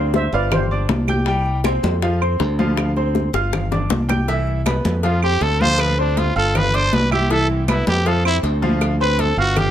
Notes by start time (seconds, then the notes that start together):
Already playing: D2 C4 C5 D5 F5 C6
0.14 C5 E5, high bongo, high conga
0.32 G1 F4 B4 D5 F5 F6, high bongo
0.51 G4 C5, high bongo, high conga, low conga, claves
0.71 D4 D5 D6, high conga
0.89 C2, high bongo, low bongo, high conga
1.08 G4 G5 G6, high bongo, high conga, claves
1.26 G3 G4 G5, high bongo, high conga
1.46 high conga
1.64 C4 C5 C6, high bongo, high conga, claves
1.83 F2, high conga
2.02 F3 F4 F5, high bongo
2.21 C4 C5 C6, high conga, claves
2.40 D2, high bongo, low bongo, high conga
2.59 F3 F4 F5, high conga
2.77 high bongo, high conga, claves
2.96 C4 C5 C6, high bongo, high conga
3.15 high bongo, high conga
3.33 G1 F4 F5 F6, high bongo
3.53 high bongo, high conga, low conga, claves
3.71 D4 D5 D6, high bongo, high conga, low conga
3.90 C2, low bongo, high conga
4.09 G4 G5 G6, low bongo, high conga, claves
4.28 E3 E4 E5, cowbell, high conga
4.47 high conga
4.66 B3 B4 B5, cowbell, high conga, claves
4.85 F2, high conga
5.03 F3 F4 F5, cowbell, high conga
5.23 C4 G4 C5 C6, high conga, claves
5.41 D2 A4, cowbell, high conga
5.61 F3 F4 C5 F5, high conga
5.78 B4, cowbell, high conga, claves
5.99 C4 D4 C5 C6, high conga
6.17 F4, cowbell, high conga
6.35 G1 F4 A4 F5 F6
6.55 B4, cowbell, high conga, low conga, claves
6.74 D4 C5 D5 D6, cowbell, high conga
6.93 C2 B4, cowbell, high conga
7.11 E4 G4 E5 E6, high conga, claves
7.30 E3 E4 A4 E5, cowbell, high conga
7.50 C4, high conga
7.68 B3 E4 B4 B5, cowbell, high conga, claves
7.87 F2 G4, high conga
8.06 F3 F4 A4 F5, cowbell, high conga
8.25 C4 E4 C5 C6, high conga, claves
8.43 D2, cowbell, high conga
8.62 F3 F4 F5, high conga
8.81 cowbell, high conga, claves
9.00 C4 B4 C5 C6, high conga
9.19 A4, cowbell, high conga
9.37 G1 F4 F#4 F5 F6
9.56 G4, cowbell, high conga, low conga, claves